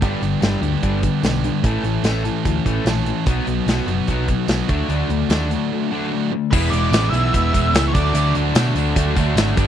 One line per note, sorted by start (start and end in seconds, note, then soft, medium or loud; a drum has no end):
0.02 0.14 G1 medium
0.02 0.21 G2 medium
0.02 0.21 D3 medium
0.02 0.21 G3 medium
0.02 0.62 B3 medium
0.02 0.61 D4 medium
0.02 0.60 G4 medium
0.02 kick loud
0.02 closed hi-hat medium
0.22 0.34 G1 medium
0.22 0.40 G2 medium
0.22 0.40 D3 medium
0.22 closed hi-hat medium
0.41 0.54 G1 medium
0.41 0.61 G2 medium
0.41 0.61 D3 medium
0.41 0.61 G3 medium
0.41 snare medium
0.41 closed hi-hat medium
0.41 tambourine medium
0.61 0.74 D2 medium
0.61 0.80 G2 medium
0.61 0.80 D3 medium
0.61 1.22 G3 medium
0.61 1.23 B3 medium
0.61 1.22 D4 medium
0.61 1.22 G4 medium
0.61 closed hi-hat soft
0.82 1.07 G1 medium
0.82 1.01 G2 medium
0.82 1.01 D3 medium
0.82 1.02 G3 medium
0.82 kick medium
0.82 closed hi-hat medium
1.02 1.21 G2 medium
1.02 1.21 D3 medium
1.02 kick medium
1.02 closed hi-hat medium
1.23 1.48 B1 medium
1.23 1.42 G2 medium
1.23 1.42 D3 medium
1.23 1.63 G3 medium
1.23 1.63 B3 medium
1.23 1.64 D4 medium
1.23 1.64 G4 medium
1.23 snare medium
1.23 closed hi-hat medium
1.23 tambourine medium
1.44 1.62 G2 medium
1.44 1.63 D3 medium
1.44 closed hi-hat medium
1.63 1.76 A1 medium
1.63 1.83 A2 medium
1.63 1.83 E3 medium
1.63 1.83 A3 medium
1.63 2.24 C#4 medium
1.63 2.23 A4 medium
1.63 kick loud
1.63 closed hi-hat medium
1.83 1.96 A1 medium
1.83 2.02 A2 medium
1.83 2.03 E3 medium
1.83 closed hi-hat medium
2.03 2.29 A1 medium
2.03 2.23 A2 medium
2.03 2.23 E3 medium
2.03 2.24 A3 medium
2.03 snare medium
2.03 closed hi-hat medium
2.03 tambourine medium
2.24 2.43 A2 medium
2.24 2.43 E3 medium
2.24 2.86 A3 medium
2.24 2.85 C#4 medium
2.24 2.85 A4 medium
2.24 closed hi-hat medium
2.45 2.58 D2 medium
2.45 2.64 A2 medium
2.45 2.64 E3 medium
2.45 kick medium
2.45 closed hi-hat medium
2.65 2.78 A1 medium
2.65 2.85 A2 medium
2.65 2.85 E3 medium
2.65 2.85 A3 medium
2.65 kick medium
2.65 closed hi-hat soft
2.85 3.10 A#1 medium
2.85 3.05 A2 medium
2.85 3.05 E3 medium
2.85 3.26 A3 medium
2.85 3.27 C#4 medium
2.85 snare loud
2.85 closed hi-hat medium
2.85 tambourine medium
2.89 3.27 A4 medium
3.06 3.26 A2 medium
3.06 3.26 E3 medium
3.06 closed hi-hat medium
3.26 3.39 B1 medium
3.26 3.46 B2 medium
3.26 3.46 F#3 medium
3.26 3.47 B3 medium
3.26 3.86 D#4 medium
3.26 3.86 F#4 medium
3.26 kick medium
3.26 closed hi-hat medium
3.47 3.59 B1 medium
3.47 3.66 B2 medium
3.47 3.66 F#3 medium
3.47 closed hi-hat medium
3.67 3.79 B1 medium
3.67 3.87 B2 medium
3.67 3.87 F#3 medium
3.67 3.88 B3 loud
3.67 snare medium
3.67 closed hi-hat medium
3.67 tambourine medium
3.86 4.00 F#1 medium
3.86 4.07 B2 medium
3.86 4.07 F#3 medium
3.86 4.48 B3 medium
3.86 4.48 D#4 medium
3.86 4.47 F#4 medium
3.86 closed hi-hat soft
4.08 4.33 B1 medium
4.08 4.27 B2 medium
4.08 4.28 F#3 medium
4.08 4.28 B3 medium
4.08 kick medium
4.08 closed hi-hat medium
4.28 4.47 B2 medium
4.28 4.47 F#3 medium
4.28 kick medium
4.28 closed hi-hat medium
4.48 4.61 B1 medium
4.48 4.67 B2 medium
4.48 4.68 F#3 medium
4.48 4.69 B3 medium
4.48 4.69 D#4 medium
4.48 4.69 F#4 medium
4.48 snare medium
4.48 closed hi-hat medium
4.48 tambourine medium
4.68 4.81 D2 medium
4.68 4.87 D3 medium
4.68 5.29 F#3 medium
4.68 4.88 A3 medium
4.68 4.88 D4 medium
4.68 5.30 F#4 medium
4.68 kick medium
4.68 closed hi-hat medium
4.88 5.02 D2 medium
4.88 5.08 D3 medium
4.88 5.09 A3 medium
4.88 5.09 D4 medium
4.88 closed hi-hat medium
5.09 5.22 D2 medium
5.09 5.29 D3 medium
5.09 5.29 A3 medium
5.09 closed hi-hat medium
5.29 5.54 D#2 medium
5.29 5.49 D3 medium
5.29 5.91 F#3 medium
5.29 5.50 A3 medium
5.29 5.51 D4 medium
5.29 snare medium
5.29 closed hi-hat medium
5.29 tambourine medium
5.33 5.90 F#4 medium
5.50 5.69 D3 medium
5.50 5.69 A3 medium
5.50 closed hi-hat medium
5.73 5.90 D3 medium
5.73 5.90 A3 medium
5.91 6.11 D3 medium
5.91 6.32 F#3 medium
5.91 6.11 A3 medium
5.91 6.12 D4 medium
5.91 6.31 F#4 medium
6.12 6.30 D3 medium
6.12 6.30 A3 medium
6.32 6.51 D3 medium
6.32 6.51 A3 medium
6.51 6.70 E1 medium
6.51 6.93 E2 medium
6.51 6.93 B2 medium
6.51 6.92 E3 medium
6.51 6.94 G#3 medium
6.51 6.95 B3 medium
6.51 6.96 E4 loud
6.51 6.73 B4 medium
6.51 kick loud
6.51 crash loud
6.51 tambourine medium
6.70 6.89 E1 medium
6.70 6.94 B3 medium
6.70 6.95 E4 medium
6.70 7.09 D5 medium
6.70 closed hi-hat medium
6.75 6.91 E3 medium
6.75 6.93 G#3 medium
6.91 7.09 A1 medium
6.91 7.34 E3 medium
6.91 7.15 G#3 medium
6.91 snare loud
6.91 closed hi-hat medium
6.91 tambourine loud
6.91 tambourine medium
6.96 7.14 B3 loud
6.96 7.12 E4 loud
7.10 7.29 B1 medium
7.10 7.52 E4 medium
7.10 7.82 E5 loud
7.10 closed hi-hat medium
7.15 7.33 E3 medium
7.15 7.54 G#3 medium
7.15 7.53 B3 medium
7.15 tambourine medium
7.26 tambourine soft
7.32 7.51 E1 medium
7.32 7.74 E2 medium
7.32 7.74 B2 medium
7.32 7.55 E3 loud
7.32 7.54 G#3 medium
7.32 7.53 B3 loud
7.32 7.51 E4 loud
7.32 kick medium
7.32 closed hi-hat medium
7.36 tambourine soft
7.53 7.71 E1 medium
7.53 7.95 E3 medium
7.53 7.74 G#3 medium
7.53 7.75 B3 medium
7.53 7.76 E4 medium
7.53 kick medium
7.53 closed hi-hat medium
7.53 tambourine medium
7.73 7.91 C#2 medium
7.73 7.94 E3 medium
7.73 7.94 G#3 medium
7.73 7.94 B3 medium
7.73 snare loud
7.73 closed hi-hat medium
7.73 tambourine loud
7.73 tambourine medium
7.77 7.93 E4 medium
7.85 7.94 C#5 medium
7.85 tambourine soft
7.93 8.12 D2 medium
7.93 8.12 D3 medium
7.93 8.12 F#3 medium
7.93 8.14 A3 medium
7.93 8.15 D4 medium
7.93 8.16 F#4 medium
7.93 8.33 D5 medium
7.93 kick loud
7.93 closed hi-hat medium
7.93 tambourine medium
8.07 tambourine soft
8.13 8.31 D2 medium
8.13 8.53 D3 medium
8.13 8.54 F#3 medium
8.13 8.55 A3 loud
8.13 8.57 D4 medium
8.13 closed hi-hat loud
8.13 tambourine medium
8.18 8.34 F#4 loud
8.35 8.52 D2 medium
8.35 8.56 A3 medium
8.35 8.57 D4 medium
8.35 8.58 F#4 medium
8.35 closed hi-hat medium
8.54 8.72 B2 medium
8.54 8.96 D3 medium
8.54 8.77 F#3 medium
8.54 8.75 A3 loud
8.54 8.74 D4 medium
8.54 snare loud
8.54 closed hi-hat loud
8.54 tambourine loud
8.54 tambourine medium
8.59 8.74 F#4 medium
8.67 tambourine soft
8.75 8.92 D2 medium
8.75 9.18 F#3 medium
8.75 9.16 A3 medium
8.75 9.15 D4 medium
8.75 8.98 F#4 medium
8.75 closed hi-hat medium
8.75 tambourine medium
8.96 9.13 D2 medium
8.96 9.37 D3 medium
8.96 9.19 A3 medium
8.96 9.17 D4 medium
8.96 9.15 F#4 loud
8.96 kick medium
8.96 closed hi-hat medium
8.96 tambourine soft
9.15 9.33 D2 medium
9.15 9.35 F#3 medium
9.15 9.36 A3 medium
9.15 9.38 D4 medium
9.15 9.56 F#4 medium
9.15 kick medium
9.15 closed hi-hat medium
9.15 tambourine medium
9.35 9.53 G#1 medium
9.35 9.55 D3 medium
9.35 9.56 F#3 medium
9.35 9.56 A3 medium
9.35 9.56 D4 medium
9.35 snare loud
9.35 closed hi-hat loud
9.35 tambourine loud
9.35 tambourine medium
9.56 9.67 G1 medium
9.56 9.67 G2 medium
9.56 9.67 D3 medium
9.56 9.67 G3 medium
9.56 9.67 B3 medium
9.56 9.67 D4 medium
9.56 9.67 G4 medium
9.56 kick loud
9.56 closed hi-hat medium
9.56 tambourine medium